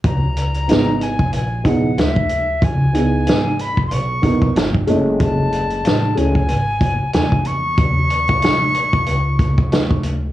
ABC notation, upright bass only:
X:1
M:4/4
L:1/16
Q:"Swing 16ths" 1/4=93
K:F#mix
V:1 name="Upright bass" clef=bass
C,,4 G,,,4 A,,,4 =D,,4 | C,,4 G,,,4 B,,,4 =G,,,2 F,,,2- | F,,,4 =A,,,2 C,,2 G,,,3 z E,,4 | D,,4 A,,,4 C,,3 z =D,,4 |]